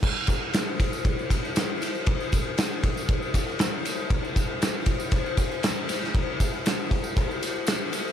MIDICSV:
0, 0, Header, 1, 2, 480
1, 0, Start_track
1, 0, Tempo, 509338
1, 25, Time_signature, 4, 2, 24, 8
1, 7654, End_track
2, 0, Start_track
2, 0, Title_t, "Drums"
2, 27, Note_on_c, 9, 36, 121
2, 28, Note_on_c, 9, 49, 127
2, 121, Note_off_c, 9, 36, 0
2, 123, Note_off_c, 9, 49, 0
2, 172, Note_on_c, 9, 54, 27
2, 254, Note_on_c, 9, 51, 89
2, 266, Note_on_c, 9, 36, 97
2, 267, Note_off_c, 9, 54, 0
2, 280, Note_on_c, 9, 54, 68
2, 349, Note_off_c, 9, 51, 0
2, 360, Note_off_c, 9, 36, 0
2, 374, Note_off_c, 9, 54, 0
2, 504, Note_on_c, 9, 51, 97
2, 511, Note_on_c, 9, 54, 92
2, 514, Note_on_c, 9, 38, 120
2, 599, Note_off_c, 9, 51, 0
2, 605, Note_off_c, 9, 54, 0
2, 608, Note_off_c, 9, 38, 0
2, 751, Note_on_c, 9, 36, 98
2, 752, Note_on_c, 9, 54, 28
2, 754, Note_on_c, 9, 51, 84
2, 845, Note_off_c, 9, 36, 0
2, 846, Note_off_c, 9, 54, 0
2, 848, Note_off_c, 9, 51, 0
2, 876, Note_on_c, 9, 54, 67
2, 970, Note_off_c, 9, 54, 0
2, 988, Note_on_c, 9, 51, 108
2, 989, Note_on_c, 9, 36, 104
2, 993, Note_on_c, 9, 54, 28
2, 1083, Note_off_c, 9, 36, 0
2, 1083, Note_off_c, 9, 51, 0
2, 1087, Note_off_c, 9, 54, 0
2, 1121, Note_on_c, 9, 54, 26
2, 1215, Note_off_c, 9, 54, 0
2, 1229, Note_on_c, 9, 36, 84
2, 1233, Note_on_c, 9, 51, 85
2, 1235, Note_on_c, 9, 54, 70
2, 1324, Note_off_c, 9, 36, 0
2, 1328, Note_off_c, 9, 51, 0
2, 1329, Note_off_c, 9, 54, 0
2, 1365, Note_on_c, 9, 54, 30
2, 1460, Note_off_c, 9, 54, 0
2, 1468, Note_on_c, 9, 54, 98
2, 1471, Note_on_c, 9, 51, 116
2, 1480, Note_on_c, 9, 38, 111
2, 1562, Note_off_c, 9, 54, 0
2, 1565, Note_off_c, 9, 51, 0
2, 1574, Note_off_c, 9, 38, 0
2, 1713, Note_on_c, 9, 54, 70
2, 1722, Note_on_c, 9, 51, 79
2, 1807, Note_off_c, 9, 54, 0
2, 1816, Note_off_c, 9, 51, 0
2, 1836, Note_on_c, 9, 54, 31
2, 1930, Note_off_c, 9, 54, 0
2, 1945, Note_on_c, 9, 51, 106
2, 1952, Note_on_c, 9, 36, 121
2, 2039, Note_off_c, 9, 51, 0
2, 2046, Note_off_c, 9, 36, 0
2, 2077, Note_on_c, 9, 54, 32
2, 2171, Note_off_c, 9, 54, 0
2, 2189, Note_on_c, 9, 54, 74
2, 2195, Note_on_c, 9, 36, 93
2, 2201, Note_on_c, 9, 51, 78
2, 2283, Note_off_c, 9, 54, 0
2, 2289, Note_off_c, 9, 36, 0
2, 2295, Note_off_c, 9, 51, 0
2, 2428, Note_on_c, 9, 51, 94
2, 2437, Note_on_c, 9, 54, 97
2, 2438, Note_on_c, 9, 38, 115
2, 2522, Note_off_c, 9, 51, 0
2, 2531, Note_off_c, 9, 54, 0
2, 2532, Note_off_c, 9, 38, 0
2, 2672, Note_on_c, 9, 36, 94
2, 2672, Note_on_c, 9, 51, 80
2, 2679, Note_on_c, 9, 54, 28
2, 2767, Note_off_c, 9, 36, 0
2, 2767, Note_off_c, 9, 51, 0
2, 2773, Note_off_c, 9, 54, 0
2, 2802, Note_on_c, 9, 54, 68
2, 2896, Note_off_c, 9, 54, 0
2, 2911, Note_on_c, 9, 36, 115
2, 2911, Note_on_c, 9, 51, 104
2, 3005, Note_off_c, 9, 36, 0
2, 3005, Note_off_c, 9, 51, 0
2, 3038, Note_on_c, 9, 54, 29
2, 3133, Note_off_c, 9, 54, 0
2, 3148, Note_on_c, 9, 51, 85
2, 3149, Note_on_c, 9, 36, 84
2, 3157, Note_on_c, 9, 54, 83
2, 3243, Note_off_c, 9, 51, 0
2, 3244, Note_off_c, 9, 36, 0
2, 3251, Note_off_c, 9, 54, 0
2, 3291, Note_on_c, 9, 54, 30
2, 3384, Note_on_c, 9, 51, 105
2, 3385, Note_off_c, 9, 54, 0
2, 3393, Note_on_c, 9, 38, 116
2, 3401, Note_on_c, 9, 54, 102
2, 3478, Note_off_c, 9, 51, 0
2, 3487, Note_off_c, 9, 38, 0
2, 3495, Note_off_c, 9, 54, 0
2, 3632, Note_on_c, 9, 51, 83
2, 3640, Note_on_c, 9, 54, 82
2, 3727, Note_off_c, 9, 51, 0
2, 3734, Note_off_c, 9, 54, 0
2, 3750, Note_on_c, 9, 54, 34
2, 3844, Note_off_c, 9, 54, 0
2, 3868, Note_on_c, 9, 36, 119
2, 3868, Note_on_c, 9, 51, 112
2, 3962, Note_off_c, 9, 36, 0
2, 3962, Note_off_c, 9, 51, 0
2, 4000, Note_on_c, 9, 54, 32
2, 4094, Note_off_c, 9, 54, 0
2, 4109, Note_on_c, 9, 51, 85
2, 4110, Note_on_c, 9, 36, 93
2, 4117, Note_on_c, 9, 54, 89
2, 4203, Note_off_c, 9, 51, 0
2, 4205, Note_off_c, 9, 36, 0
2, 4212, Note_off_c, 9, 54, 0
2, 4352, Note_on_c, 9, 51, 102
2, 4357, Note_on_c, 9, 54, 110
2, 4361, Note_on_c, 9, 38, 102
2, 4446, Note_off_c, 9, 51, 0
2, 4451, Note_off_c, 9, 54, 0
2, 4455, Note_off_c, 9, 38, 0
2, 4580, Note_on_c, 9, 51, 86
2, 4585, Note_on_c, 9, 36, 91
2, 4594, Note_on_c, 9, 54, 29
2, 4674, Note_off_c, 9, 51, 0
2, 4679, Note_off_c, 9, 36, 0
2, 4689, Note_off_c, 9, 54, 0
2, 4709, Note_on_c, 9, 54, 72
2, 4803, Note_off_c, 9, 54, 0
2, 4821, Note_on_c, 9, 51, 116
2, 4825, Note_on_c, 9, 36, 119
2, 4836, Note_on_c, 9, 54, 31
2, 4915, Note_off_c, 9, 51, 0
2, 4920, Note_off_c, 9, 36, 0
2, 4931, Note_off_c, 9, 54, 0
2, 4958, Note_on_c, 9, 54, 30
2, 5052, Note_off_c, 9, 54, 0
2, 5062, Note_on_c, 9, 51, 85
2, 5066, Note_on_c, 9, 36, 90
2, 5071, Note_on_c, 9, 54, 80
2, 5157, Note_off_c, 9, 51, 0
2, 5161, Note_off_c, 9, 36, 0
2, 5165, Note_off_c, 9, 54, 0
2, 5198, Note_on_c, 9, 54, 32
2, 5292, Note_off_c, 9, 54, 0
2, 5306, Note_on_c, 9, 51, 107
2, 5313, Note_on_c, 9, 54, 106
2, 5316, Note_on_c, 9, 38, 119
2, 5401, Note_off_c, 9, 51, 0
2, 5407, Note_off_c, 9, 54, 0
2, 5410, Note_off_c, 9, 38, 0
2, 5550, Note_on_c, 9, 51, 83
2, 5556, Note_on_c, 9, 54, 85
2, 5559, Note_on_c, 9, 38, 35
2, 5644, Note_off_c, 9, 51, 0
2, 5650, Note_off_c, 9, 54, 0
2, 5653, Note_off_c, 9, 38, 0
2, 5677, Note_on_c, 9, 54, 35
2, 5691, Note_on_c, 9, 38, 34
2, 5771, Note_off_c, 9, 54, 0
2, 5786, Note_off_c, 9, 38, 0
2, 5792, Note_on_c, 9, 36, 127
2, 5797, Note_on_c, 9, 51, 115
2, 5886, Note_off_c, 9, 36, 0
2, 5891, Note_off_c, 9, 51, 0
2, 6032, Note_on_c, 9, 54, 87
2, 6033, Note_on_c, 9, 36, 97
2, 6037, Note_on_c, 9, 51, 80
2, 6126, Note_off_c, 9, 54, 0
2, 6128, Note_off_c, 9, 36, 0
2, 6132, Note_off_c, 9, 51, 0
2, 6158, Note_on_c, 9, 54, 32
2, 6253, Note_off_c, 9, 54, 0
2, 6274, Note_on_c, 9, 54, 100
2, 6275, Note_on_c, 9, 51, 106
2, 6285, Note_on_c, 9, 38, 104
2, 6368, Note_off_c, 9, 54, 0
2, 6369, Note_off_c, 9, 51, 0
2, 6379, Note_off_c, 9, 38, 0
2, 6397, Note_on_c, 9, 54, 32
2, 6492, Note_off_c, 9, 54, 0
2, 6514, Note_on_c, 9, 36, 100
2, 6515, Note_on_c, 9, 51, 74
2, 6523, Note_on_c, 9, 54, 30
2, 6608, Note_off_c, 9, 36, 0
2, 6610, Note_off_c, 9, 51, 0
2, 6617, Note_off_c, 9, 54, 0
2, 6632, Note_on_c, 9, 54, 73
2, 6726, Note_off_c, 9, 54, 0
2, 6755, Note_on_c, 9, 36, 120
2, 6760, Note_on_c, 9, 54, 30
2, 6761, Note_on_c, 9, 51, 101
2, 6849, Note_off_c, 9, 36, 0
2, 6855, Note_off_c, 9, 51, 0
2, 6855, Note_off_c, 9, 54, 0
2, 6889, Note_on_c, 9, 54, 30
2, 6983, Note_off_c, 9, 54, 0
2, 6997, Note_on_c, 9, 54, 83
2, 6999, Note_on_c, 9, 51, 77
2, 7091, Note_off_c, 9, 54, 0
2, 7093, Note_off_c, 9, 51, 0
2, 7120, Note_on_c, 9, 54, 32
2, 7214, Note_off_c, 9, 54, 0
2, 7224, Note_on_c, 9, 54, 103
2, 7230, Note_on_c, 9, 51, 114
2, 7240, Note_on_c, 9, 38, 119
2, 7318, Note_off_c, 9, 54, 0
2, 7324, Note_off_c, 9, 51, 0
2, 7334, Note_off_c, 9, 38, 0
2, 7470, Note_on_c, 9, 51, 76
2, 7475, Note_on_c, 9, 54, 86
2, 7565, Note_off_c, 9, 51, 0
2, 7570, Note_off_c, 9, 54, 0
2, 7612, Note_on_c, 9, 54, 32
2, 7654, Note_off_c, 9, 54, 0
2, 7654, End_track
0, 0, End_of_file